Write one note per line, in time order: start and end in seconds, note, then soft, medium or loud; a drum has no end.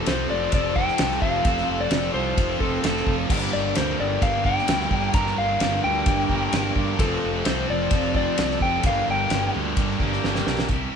0.00 0.32 F2 medium
0.00 0.30 C3 loud
0.00 0.30 F3 loud
0.00 0.75 F3 medium
0.00 0.75 C4 loud
0.00 3.27 C4 medium
0.00 0.76 F4 loud
0.00 3.27 F4 medium
0.00 0.75 A4 loud
0.00 3.27 A4 medium
0.06 0.25 C2 loud
0.06 0.51 F3 medium
0.06 0.52 C4 loud
0.06 0.53 F4 loud
0.06 0.54 A4 loud
0.06 0.30 C5 medium
0.06 snare loud
0.06 ride bell medium
0.30 0.47 F1 medium
0.30 1.44 F2 medium
0.30 1.45 C3 medium
0.30 1.44 F3 medium
0.30 0.53 D5 medium
0.52 0.88 F1 medium
0.52 0.98 F3 medium
0.52 0.77 C4 medium
0.52 0.76 F4 medium
0.52 0.74 A4 medium
0.52 0.78 D5 loud
0.52 kick loud
0.52 ride bell medium
0.75 0.97 F3 medium
0.75 0.99 C4 medium
0.75 1.00 F4 medium
0.75 1.01 A4 medium
0.75 1.19 G5 loud
0.75 kick medium
0.88 snare soft
0.98 1.17 C2 medium
0.98 1.43 F3 medium
0.98 1.23 C4 medium
0.98 1.22 F4 medium
0.98 1.20 A4 medium
0.98 snare loud
0.98 ride bell medium
1.11 snare soft
1.21 1.40 F1 medium
1.21 1.44 C4 medium
1.21 1.45 F4 medium
1.21 1.46 A4 medium
1.21 1.82 F5 loud
1.21 kick medium
1.44 1.63 F1 loud
1.44 2.13 F2 medium
1.44 2.13 C3 medium
1.44 1.90 F3 loud
1.44 2.12 F3 medium
1.44 1.91 C4 medium
1.44 1.92 F4 loud
1.44 1.93 A4 loud
1.44 kick loud
1.44 ride bell medium
1.57 snare soft
1.69 1.86 F1 medium
1.81 2.14 D5 medium
1.91 2.08 F1 medium
1.91 2.36 F3 medium
1.91 2.37 C4 medium
1.91 2.38 F4 loud
1.91 2.39 A4 medium
1.91 snare loud
1.91 ride bell medium
2.14 2.32 C2 medium
2.14 3.29 F2 medium
2.14 3.29 C3 medium
2.14 3.28 F3 medium
2.14 2.57 C5 medium
2.37 2.55 F1 medium
2.37 2.82 F3 medium
2.37 2.61 C4 medium
2.37 2.60 F4 medium
2.37 2.59 A4 medium
2.37 kick loud
2.37 ride bell medium
2.60 2.78 F1 medium
2.60 2.82 F3 medium
2.60 2.83 C4 medium
2.60 2.84 F4 medium
2.60 2.85 A4 medium
2.60 2.82 A4 medium
2.60 kick medium
2.83 3.01 F1 medium
2.83 3.28 F3 medium
2.83 3.08 C4 medium
2.83 3.07 F4 medium
2.83 3.16 A4 medium
2.83 3.05 A4 medium
2.83 snare loud
2.83 ride bell medium
2.97 snare soft
3.06 3.25 F1 medium
3.06 3.30 C4 medium
3.06 3.29 F4 medium
3.06 3.28 A4 medium
3.06 kick medium
3.29 3.48 G1 loud
3.29 3.74 G2 medium
3.29 4.01 G2 loud
3.29 3.75 D3 loud
3.29 3.98 D3 loud
3.29 3.76 G3 loud
3.29 3.98 G3 loud
3.29 3.76 A#3 loud
3.29 3.77 D4 loud
3.29 6.96 D4 medium
3.29 6.97 G4 medium
3.29 3.77 A#4 loud
3.29 6.97 A#4 medium
3.29 kick loud
3.29 crash loud
3.43 snare soft
3.53 3.71 G1 medium
3.53 3.76 D5 medium
3.75 3.94 D2 medium
3.75 4.45 G2 medium
3.75 4.45 D3 medium
3.75 4.20 G3 medium
3.75 4.21 A#3 medium
3.75 4.22 D4 loud
3.75 4.23 A#4 loud
3.75 4.00 C5 medium
3.75 snare loud
3.75 ride bell medium
3.99 4.17 G1 medium
3.99 5.13 G2 medium
3.99 5.14 D3 medium
3.99 5.13 G3 medium
3.99 4.24 D5 medium
4.21 4.57 G1 loud
4.21 4.45 G3 medium
4.21 4.44 A#3 medium
4.21 4.43 D4 medium
4.21 4.42 A#4 medium
4.21 4.46 F5 loud
4.21 kick loud
4.21 ride bell medium
4.44 4.67 G2 medium
4.44 4.67 D3 medium
4.44 4.66 G3 medium
4.44 4.67 A#3 medium
4.44 4.68 D4 medium
4.44 4.69 A#4 medium
4.44 5.17 G5 loud
4.44 kick medium
4.58 snare soft
4.67 4.86 D2 loud
4.67 5.13 G2 medium
4.67 5.13 D3 medium
4.67 4.92 G3 medium
4.67 4.91 A#3 medium
4.67 4.90 D4 medium
4.67 4.89 A#4 medium
4.67 snare loud
4.67 ride bell medium
4.81 snare soft
4.90 5.09 G1 loud
4.90 5.14 G3 medium
4.90 5.14 A#3 medium
4.90 5.15 D4 medium
4.90 5.15 A#4 medium
4.90 kick medium
5.13 5.32 G1 loud
5.13 5.59 G2 loud
5.13 5.82 G2 medium
5.13 5.60 D3 loud
5.13 5.83 D3 loud
5.13 5.60 G3 loud
5.13 5.82 G3 loud
5.13 5.60 A#3 medium
5.13 5.61 D4 loud
5.13 5.61 A#4 loud
5.13 5.36 A#5 loud
5.13 kick loud
5.13 ride bell medium
5.26 snare soft
5.38 5.55 G1 medium
5.38 5.81 F5 loud
5.60 5.78 G1 medium
5.60 6.30 G2 medium
5.60 6.30 D3 medium
5.60 6.05 G3 medium
5.60 6.06 A#3 medium
5.60 6.07 D4 loud
5.60 6.08 A#4 loud
5.60 snare loud
5.60 ride bell medium
5.84 6.02 D2 loud
5.84 6.99 G2 medium
5.84 6.98 D3 medium
5.84 6.98 G3 medium
5.84 6.72 G5 medium
6.06 6.24 G1 medium
6.06 6.31 G3 medium
6.06 6.31 A#3 medium
6.06 6.30 D4 medium
6.06 6.29 A#4 medium
6.06 kick loud
6.06 ride bell medium
6.30 6.47 G1 medium
6.30 6.52 G2 medium
6.30 6.53 D3 medium
6.30 6.52 G3 medium
6.30 6.53 A#3 medium
6.30 6.54 D4 medium
6.30 6.54 A#4 medium
6.30 kick medium
6.53 6.70 G1 loud
6.53 6.98 G2 medium
6.53 6.99 D3 medium
6.53 6.77 G3 medium
6.53 6.76 A#3 medium
6.53 6.75 D4 medium
6.53 6.74 A#4 loud
6.53 snare loud
6.53 ride bell medium
6.75 6.94 G2 loud
6.75 6.98 G3 medium
6.75 6.99 A#3 medium
6.75 6.98 D4 medium
6.75 6.98 A#4 medium
6.75 kick medium
6.98 7.17 F1 loud
6.98 7.67 F2 medium
6.98 7.68 C3 loud
6.98 7.43 F3 medium
6.98 7.67 F3 medium
6.98 7.44 C4 loud
6.98 8.83 C4 medium
6.98 7.45 F4 medium
6.98 8.83 F4 medium
6.98 7.43 A4 medium
6.98 7.46 A4 loud
6.98 8.83 A4 medium
6.98 kick loud
6.98 ride bell medium
7.24 7.41 F1 medium
7.44 7.63 C2 loud
7.44 7.89 F3 medium
7.44 7.90 C4 loud
7.44 7.92 F4 loud
7.44 7.92 A4 loud
7.44 7.70 C5 medium
7.44 snare loud
7.44 ride bell medium
7.69 7.86 F1 medium
7.69 8.84 F2 medium
7.69 8.84 C3 medium
7.69 8.83 F3 medium
7.69 8.15 D5 loud
7.91 8.27 F1 loud
7.91 8.36 F3 medium
7.91 8.15 C4 medium
7.91 8.14 F4 medium
7.91 8.13 A4 medium
7.91 kick loud
7.91 ride bell medium
8.14 8.38 F3 medium
8.14 8.37 C4 medium
8.14 8.38 F4 medium
8.14 8.38 A4 medium
8.14 8.59 D5 loud
8.14 kick medium
8.37 8.56 C2 loud
8.37 8.83 F3 medium
8.37 8.62 C4 medium
8.37 8.60 F4 medium
8.37 8.59 A4 medium
8.37 snare loud
8.37 ride bell medium
8.51 snare soft
8.61 8.79 F1 loud
8.61 8.84 C4 medium
8.61 8.83 F4 medium
8.61 8.83 A4 medium
8.61 8.86 G5 loud
8.61 kick medium
8.83 9.01 G1 loud
8.83 9.29 G2 medium
8.83 9.52 G2 loud
8.83 9.29 D3 medium
8.83 9.53 D3 loud
8.83 9.30 G3 medium
8.83 9.52 G3 medium
8.83 9.31 A#3 loud
8.83 9.31 D4 loud
8.83 10.69 D4 medium
8.83 10.69 G4 medium
8.83 9.32 G4 loud
8.83 10.69 A#4 medium
8.83 9.99 A#4 loud
8.83 9.07 F5 loud
8.83 kick loud
8.83 ride bell medium
9.08 9.25 G1 medium
9.08 9.52 G5 loud
9.30 9.48 G1 medium
9.30 10.00 G2 medium
9.30 10.00 D3 medium
9.30 9.76 G3 medium
9.30 9.76 A#3 loud
9.30 9.77 D4 loud
9.30 9.78 G4 loud
9.30 snare loud
9.30 ride bell medium
9.53 9.72 D2 medium
9.53 10.69 G2 medium
9.53 10.69 D3 medium
9.53 10.68 G3 medium
9.77 9.95 G1 medium
9.77 10.01 G3 medium
9.77 10.01 A#3 medium
9.77 10.00 D4 medium
9.77 9.99 G4 medium
9.77 kick loud
9.77 ride bell medium
10.00 10.18 G1 medium
10.00 10.22 G2 medium
10.00 10.23 D3 medium
10.00 10.22 G3 medium
10.00 10.23 A#3 medium
10.00 10.24 D4 medium
10.00 10.25 G4 medium
10.00 10.22 A#4 medium
10.00 kick medium
10.12 snare soft
10.23 10.42 G1 medium
10.23 10.68 G2 medium
10.23 10.69 D3 medium
10.23 10.48 G3 medium
10.23 10.47 A#3 medium
10.23 10.46 D4 medium
10.23 10.45 G4 medium
10.23 10.70 A#4 medium
10.23 snare medium
10.35 snare medium
10.46 10.70 B1 medium
10.46 10.69 G3 medium
10.46 10.69 A#3 medium
10.46 10.69 D4 medium
10.46 10.68 G4 medium
10.46 snare medium
10.59 snare medium
10.68 10.85 C2 medium
10.68 10.96 C3 medium
10.68 10.96 E3 medium
10.68 10.96 G3 medium
10.68 10.96 C4 medium
10.68 10.96 E4 medium
10.68 10.96 G4 medium
10.68 kick loud
10.68 closed hi-hat medium